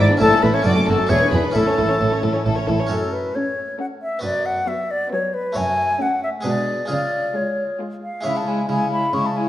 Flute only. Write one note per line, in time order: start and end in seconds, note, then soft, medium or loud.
0.00 0.20 D5 medium
0.21 0.44 A4 loud
0.43 0.55 B4 medium
0.54 0.65 C#5 medium
0.65 0.71 D5 medium
0.87 1.11 A4 medium
1.09 1.31 C#5 medium
1.32 1.54 B4 medium
1.54 2.44 A4 medium
2.91 3.14 A4 medium
3.13 3.37 B4 medium
3.35 3.79 C#5 medium
3.80 3.86 F#5 medium
4.02 4.23 E5 medium
4.24 4.47 D5 medium
4.46 4.69 F#5 medium
4.68 4.92 E5 medium
4.91 5.12 D5 medium
5.12 5.36 C#5 medium
5.34 5.58 B4 medium
5.57 6.03 G#5 medium
6.02 6.23 F#5 medium
6.23 6.29 E5 medium
6.45 6.89 D5 medium
6.90 7.37 D5 medium
7.36 7.80 C#5 medium
8.03 8.27 F5 medium
8.26 8.38 E5 medium
8.37 8.50 A5 medium
8.48 8.70 G#5 medium
8.70 8.92 G#5 medium
8.93 9.16 B5 medium
9.14 9.28 C#6 medium
9.26 9.38 A5 medium
9.37 9.49 G#5 medium